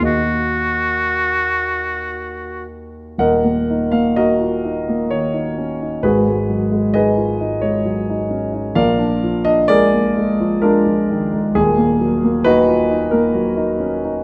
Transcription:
X:1
M:3/4
L:1/16
Q:1/4=65
K:Ebm
V:1 name="Oboe"
G8- G2 z2 | z12 | z12 | z12 |
z12 |]
V:2 name="Grand piano"
e8 z4 | [Beg]3 f [GBe]4 d4 | [GAc]4 [Ace]3 d3 z2 | [B=df]3 e [ABd]4 [=DFB]4 |
A4 [EGc]3 B3 z2 |]
V:3 name="Grand piano"
[E,,E,B,G]12 | [E,,,E,,] B, E B, E F E B, E, E D E | [A,,,A,,] A, G, A, E F E A, G, E D E | [B,,,B,,] =D F, D A, B, A, F, A, F, E, A, |
[E,,,E,,] B, G, B,2 F E B, G, E D E |]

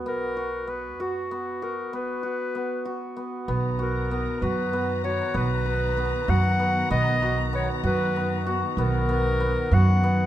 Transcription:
X:1
M:11/8
L:1/8
Q:1/4=96
K:B
V:1 name="Clarinet"
A2 B F2 A B4 z | z A2 B2 c B3 f2 | d2 c B2 z A3 f2 |]
V:2 name="Hammered dulcimer"
B, F B, F B, F B, F B, F B, | B, F B, F B, F B, B B, F B, | B, F B, F B, F B, B, B, F B, |]
V:3 name="String section"
z8 z3 | [D,B,a]8- [D,B,a]3- | [D,B,a]8- [D,B,a]3 |]
V:4 name="Upright bass" clef=bass
B,,,3 F,,3 B,,, z4 | B,,,3 F,,3 B,,,3 F,,2 | B,,,3 F,,3 B,,,3 F,,2 |]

